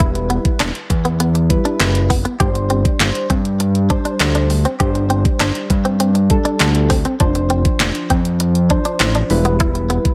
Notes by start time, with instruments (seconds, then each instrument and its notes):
Already playing: analog synth bass E1, synth keys G3 E4 B4
0.00 kick, closed hi-hat
0.15 muted clean electric guitar stroke, closed hi-hat
0.30 clean electric guitar B3, closed hi-hat
0.45 kick, closed hi-hat
0.60 analog synth bass E1, clean electric guitar D4, snare, clap, closed hi-hat
0.75 closed hi-hat
0.90 analog synth bass E2, muted clean electric guitar stroke, kick, closed hi-hat
1.05 clean electric guitar B3, closed hi-hat
1.20 clean electric guitar B3, closed hi-hat
1.35 muted clean electric guitar stroke, closed hi-hat
1.50 synth keys G3 E4 B4, kick, closed hi-hat
1.65 clean electric guitar D4, closed hi-hat
1.80 analog synth bass F#1, muted clean electric guitar stroke, snare, clap, closed hi-hat
1.95 closed hi-hat
2.10 clean electric guitar B3, kick, open hi-hat
2.25 clean electric guitar B3, closed hi-hat
2.40 analog synth bass G1, synth keys G3 D4 C5, clean electric guitar G4, kick, closed hi-hat
2.55 muted clean electric guitar stroke, closed hi-hat
2.70 clean electric guitar C4, closed hi-hat
2.85 kick, closed hi-hat
3.00 analog synth bass G1, snare, clap, closed hi-hat
3.15 closed hi-hat
3.30 analog synth bass G2, clean electric guitar C4, kick, closed hi-hat
3.45 closed hi-hat
3.60 muted clean electric guitar stroke, closed hi-hat
3.75 closed hi-hat
3.90 synth keys G3 D4 C5, clean electric guitar D4, kick, closed hi-hat
4.05 clean electric guitar D4, closed hi-hat
4.20 analog synth bass D2, snare, clap, closed hi-hat
4.35 clean electric guitar D4, closed hi-hat
4.50 muted clean electric guitar stroke, open hi-hat
4.65 clean electric guitar C4, closed hi-hat
4.80 analog synth bass G1, synth keys G3 D4 C5, clean electric guitar G4, kick, closed hi-hat
4.95 muted clean electric guitar stroke, closed hi-hat
5.10 clean electric guitar C4, closed hi-hat
5.25 kick, closed hi-hat
5.40 analog synth bass G1, clean electric guitar D4, snare, clap, closed hi-hat
5.55 closed hi-hat
5.70 analog synth bass G2, muted clean electric guitar stroke, kick, closed hi-hat
5.85 clean electric guitar C4, closed hi-hat
6.00 clean electric guitar C4, closed hi-hat
6.15 muted clean electric guitar stroke, closed hi-hat
6.30 synth keys G3 D4 A4, kick, closed hi-hat
6.45 clean electric guitar D4, closed hi-hat
6.60 analog synth bass D2, muted clean electric guitar stroke, snare, clap, closed hi-hat
6.75 closed hi-hat
6.90 clean electric guitar C4, kick, open hi-hat
7.05 clean electric guitar C4, closed hi-hat
7.20 analog synth bass F1, synth keys F3 D4 C5, clean electric guitar D4, kick, closed hi-hat
7.35 muted clean electric guitar stroke, closed hi-hat
7.50 clean electric guitar C4, closed hi-hat
7.65 kick, closed hi-hat
7.80 analog synth bass F1, snare, clap, closed hi-hat
7.95 closed hi-hat
8.10 analog synth bass F2, clean electric guitar C4, kick, closed hi-hat
8.25 closed hi-hat
8.40 muted clean electric guitar stroke, closed hi-hat
8.55 closed hi-hat
8.70 synth keys F3 D4 C5, clean electric guitar D4, kick, closed hi-hat
8.85 clean electric guitar D4, closed hi-hat
9.00 analog synth bass A1, snare, clap, closed hi-hat
9.15 clean electric guitar D4, closed hi-hat
9.30 analog synth bass E1, synth keys G3 E4 B4, muted clean electric guitar stroke, open hi-hat
9.45 clean electric guitar B3, closed hi-hat
9.60 clean electric guitar E4, kick, closed hi-hat
9.75 muted clean electric guitar stroke, closed hi-hat
9.90 clean electric guitar B3, closed hi-hat
10.05 kick, closed hi-hat